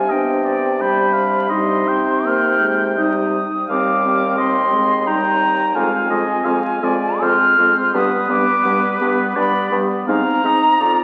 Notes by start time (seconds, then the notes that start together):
Already playing: C3 G3 F5 G#5
0.09 B3 D4 D#5 G5
0.45 D5
0.81 G3 D4 G5 B5
1.13 F5
1.49 C3 G3 D#4 D#5 C6
1.87 C4 G5
2.25 A#3 F6
2.61 G#3
2.97 G3 D#4 D#6
3.68 D#2 G3 C4 F5 D6
4.04 C4
4.38 C4 D#5 C6
4.73 G#3
5.07 G3 D#4 G5 A#5
5.75 F2 G#3 C4 F5 G#5
6.10 F2 G#3 C4 D#5
6.45 F2 G#3 C4 F5
6.82 F2 G#3 C4 D5
7.21 F2 G#3 C4 C5 F6
7.58 F2 G#3 C4
7.94 G2 G3 B3 B4 D#6
8.29 G2 G3 B3 D6
8.65 G2 G3 B3
9.01 G2 G3 B3
9.35 G2 G3 B3 D5 B5
9.71 G2 G3 B3
10.07 G#2 C4 D#4 F5 A#5
10.43 G#2 C4 D#4 D#5
10.80 F2 C4 F4 D5